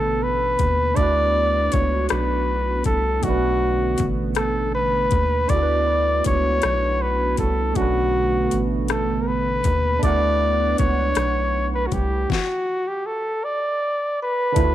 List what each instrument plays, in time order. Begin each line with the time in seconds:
Already playing: analog synth bass A1, tine electric piano B2 A3 C#4 D4 B4, analog synth pad D3 A3 B3, flugelhorn A4
0.23 flugelhorn B4
0.59 analog synth bass D#2, kick, closed hi-hat
0.94 analog synth bass D2, tine electric piano A3 D4, analog synth pad B3 D4 F#4, flugelhorn D5, kick, closed hi-hat
0.98 tine electric piano E4 F#4
1.03 tine electric piano B4
1.72 analog synth bass C#2, flugelhorn C#5, kick, closed hi-hat
2.09 analog synth bass B1, flugelhorn B4, cross-stick, closed hi-hat
2.84 analog synth bass C2, flugelhorn A4, kick, closed hi-hat
3.21 analog synth bass B1, tine electric piano B2 A3 C#4, analog synth pad D3 A3 B3, flugelhorn F#4, kick, closed hi-hat
3.27 tine electric piano D4 B4
3.98 analog synth bass A1, kick, closed hi-hat
4.35 flugelhorn A4, cross-stick, closed hi-hat
4.74 flugelhorn B4
5.11 analog synth bass D#2, kick, closed hi-hat
5.47 analog synth bass D2, tine electric piano A3 D4, analog synth pad B3 D4 F#4, flugelhorn D5, kick, closed hi-hat
5.52 tine electric piano E4 F#4
5.56 tine electric piano A4
5.62 tine electric piano B4
6.24 analog synth bass C#2, flugelhorn C#5, kick, closed hi-hat
6.62 analog synth bass B1, cross-stick, closed hi-hat
7.02 flugelhorn B4
7.37 analog synth bass C2, flugelhorn A4, kick, closed hi-hat
7.73 tine electric piano B2 A3, analog synth pad D3 A3 B3, flugelhorn F#4, kick, closed hi-hat
7.77 analog synth bass B1, tine electric piano C#4 D4
7.82 tine electric piano B4
8.51 analog synth bass A1, closed hi-hat
8.88 flugelhorn A4, cross-stick, closed hi-hat
9.22 flugelhorn A#4
9.27 flugelhorn B4
9.64 analog synth bass D#2, kick, closed hi-hat
9.99 tine electric piano A3 D4, analog synth pad B3 D4 F#5, kick, closed hi-hat
10.03 analog synth bass D2, tine electric piano E4 F#5, flugelhorn D5
10.08 tine electric piano A#4
10.14 tine electric piano B4
10.78 analog synth bass C#2, flugelhorn C#5, kick, closed hi-hat
11.15 analog synth bass B1, cross-stick, closed hi-hat
11.74 flugelhorn B4
11.86 flugelhorn F#4
11.92 analog synth bass C2, flugelhorn G4, kick, closed hi-hat
12.30 flugelhorn F#4, kick, snare
12.88 flugelhorn G4
13.06 flugelhorn A4
13.44 flugelhorn D5
14.23 flugelhorn B4
14.52 tine electric piano D3 D4 E4, analog synth pad B3, closed hi-hat
14.56 analog synth bass D2, tine electric piano F4, kick
14.61 tine electric piano B4
14.65 tine electric piano F#4